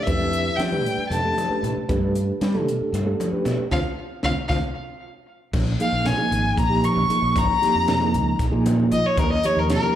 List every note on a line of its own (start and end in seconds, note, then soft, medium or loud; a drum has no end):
0.03 0.60 E3 medium
0.03 0.63 G4 medium
0.03 0.58 E5 loud
0.03 muted conga medium
0.07 0.48 F2 medium
0.07 0.63 A3 medium
0.07 0.63 D4 medium
0.07 0.64 B4 medium
0.07 kick medium
0.07 closed hi-hat medium
0.20 low conga medium
0.33 closed hi-hat medium
0.46 high conga medium
0.56 0.84 F3 medium
0.56 1.10 G3 medium
0.56 1.09 G5 medium
0.56 closed hi-hat medium
0.56 low conga soft
0.60 snare medium
0.72 1.17 A3 medium
0.72 1.18 D4 medium
0.72 1.17 G4 medium
0.72 1.18 B4 medium
0.72 muted conga medium
0.72 low conga medium
0.84 0.95 A2 medium
0.84 closed hi-hat medium
0.98 muted fretless electric bass stroke soft
1.10 1.31 F2 medium
1.10 1.66 A3 medium
1.10 1.66 A5 medium
1.10 closed hi-hat medium
1.10 low conga medium
1.24 1.47 A3 medium
1.24 1.47 D4 medium
1.24 1.47 G4 medium
1.24 1.48 A4 medium
1.24 low conga soft
1.38 closed hi-hat medium
1.38 muted conga medium
1.38 high conga medium
1.49 1.84 A3 medium
1.49 1.84 D4 medium
1.49 1.84 G4 medium
1.49 1.84 B4 medium
1.49 muted fretless electric bass stroke soft
1.63 1.73 A2 medium
1.63 closed hi-hat soft
1.63 low conga medium
1.77 muted fretless electric bass stroke soft
1.89 2.30 G2 medium
1.89 2.45 A3 medium
1.89 2.46 D4 medium
1.89 2.45 G4 medium
1.89 2.45 B4 loud
1.89 kick loud
1.89 closed hi-hat medium
1.89 muted conga medium
2.03 low conga medium
2.15 closed hi-hat medium
2.41 2.67 G3 medium
2.41 snare medium
2.41 closed hi-hat medium
2.41 low conga soft
2.55 3.00 A3 loud
2.55 3.00 D4 medium
2.55 3.00 G4 medium
2.55 3.00 A4 loud
2.55 muted conga medium
2.55 low conga medium
2.67 2.78 B2 medium
2.67 closed hi-hat medium
2.81 muted fretless electric bass stroke soft
2.92 3.14 G2 medium
2.92 closed hi-hat medium
2.92 low conga medium
3.06 3.29 A3 medium
3.06 3.29 D4 medium
3.06 3.29 G4 medium
3.06 3.29 A4 loud
3.06 low conga soft
3.20 closed hi-hat medium
3.20 muted conga medium
3.20 high conga medium
3.32 3.66 A3 medium
3.32 3.67 D4 medium
3.32 3.67 G4 medium
3.32 3.67 B4 medium
3.32 muted fretless electric bass stroke soft
3.45 3.56 B2 medium
3.45 snare soft
3.45 closed hi-hat medium
3.45 low conga medium
3.58 muted fretless electric bass stroke soft
3.71 3.82 D2 medium
3.71 3.79 F3 medium
3.71 3.80 C4 medium
3.71 3.80 D4 medium
3.71 3.80 F4 medium
3.71 3.80 F5 medium
3.71 kick medium
3.71 snare medium
3.71 low conga medium
4.23 4.34 D2 medium
4.23 4.32 F3 medium
4.23 4.33 C4 medium
4.23 4.33 D4 medium
4.23 4.33 F4 medium
4.23 4.32 F5 medium
4.23 kick medium
4.23 snare medium
4.23 low conga medium
4.48 4.60 D2 medium
4.48 4.57 F3 medium
4.48 4.59 C4 medium
4.48 4.59 D4 medium
4.48 4.58 F4 medium
4.48 4.57 F5 medium
4.48 kick medium
4.48 snare medium
4.48 low conga medium
5.53 5.74 A#1 loud
5.53 kick medium
5.53 crash medium
5.53 muted conga medium
5.53 low conga soft
5.80 6.14 F3 medium
5.80 6.14 A#3 medium
5.80 6.14 D#4 medium
5.80 6.14 G#4 medium
5.80 6.07 F5 medium
5.80 closed hi-hat medium
5.92 6.13 A#1 medium
5.92 high conga medium
6.05 6.57 G#5 medium
6.05 snare medium
6.05 closed hi-hat medium
6.05 low conga medium
6.18 6.63 F3 medium
6.18 6.63 A#3 medium
6.18 6.63 D#4 medium
6.18 6.63 G#4 medium
6.18 muted conga medium
6.31 6.52 G#1 medium
6.31 closed hi-hat medium
6.31 low conga soft
6.58 6.89 A#1 medium
6.58 6.86 A#5 medium
6.58 kick medium
6.58 closed hi-hat medium
6.69 7.04 F3 medium
6.69 7.04 A#3 medium
6.69 7.04 D#4 medium
6.69 7.04 G4 medium
6.82 7.39 C#6 medium
6.82 closed hi-hat medium
6.82 high conga medium
6.96 7.07 A#1 medium
6.96 low conga medium
7.09 7.55 F3 medium
7.09 7.55 A#3 medium
7.09 7.55 D#4 medium
7.09 7.55 G#4 medium
7.09 muted fretless electric bass stroke soft
7.09 closed hi-hat medium
7.09 low conga soft
7.22 7.33 A#1 medium
7.22 low conga soft
7.36 7.46 G#1 loud
7.36 8.38 A#5 loud
7.36 kick loud
7.36 closed hi-hat medium
7.36 muted conga medium
7.36 low conga soft
7.62 7.96 F3 medium
7.62 7.96 A#3 medium
7.62 7.96 D#4 medium
7.62 7.96 G4 medium
7.62 muted fretless electric bass stroke soft
7.62 snare soft
7.62 closed hi-hat medium
7.75 8.16 F2 medium
7.75 high conga medium
7.88 snare loud
7.88 closed hi-hat medium
7.88 low conga medium
8.00 8.45 F3 medium
8.00 8.45 A#3 medium
8.00 8.46 D#4 medium
8.00 8.45 G#4 medium
8.00 muted conga medium
8.14 8.35 C#2 medium
8.14 closed hi-hat medium
8.14 low conga soft
8.39 8.50 A#1 medium
8.39 kick loud
8.39 snare soft
8.39 closed hi-hat medium
8.52 8.93 A#2 medium
8.52 8.86 F3 loud
8.52 8.86 A#3 medium
8.52 8.86 D#4 medium
8.52 8.86 G#4 loud
8.66 closed hi-hat medium
8.66 muted conga medium
8.66 high conga medium
8.80 low conga medium
8.91 9.02 A#1 medium
8.91 9.18 F3 medium
8.91 9.18 A#3 medium
8.91 9.18 D#4 medium
8.91 9.18 F4 medium
8.91 9.08 D#5 medium
8.91 closed hi-hat medium
8.91 low conga soft
9.06 9.21 C#5 medium
9.06 low conga soft
9.17 9.38 D#2 loud
9.17 9.31 A#4 medium
9.17 kick loud
9.17 closed hi-hat medium
9.17 muted conga medium
9.17 low conga soft
9.33 9.47 D#5 medium
9.43 9.78 F3 medium
9.43 9.78 A#3 medium
9.43 9.78 D#4 medium
9.43 9.78 G4 medium
9.43 9.61 C#5 medium
9.43 closed hi-hat medium
9.56 9.77 D#2 medium
9.56 9.70 A#4 medium
9.56 high conga medium
9.70 9.95 A#4 loud
9.70 snare loud
9.70 closed hi-hat medium
9.70 low conga medium
9.83 9.95 F3 medium
9.83 9.95 A#3 medium
9.83 9.95 D#4 medium
9.83 9.95 G4 medium
9.83 muted conga medium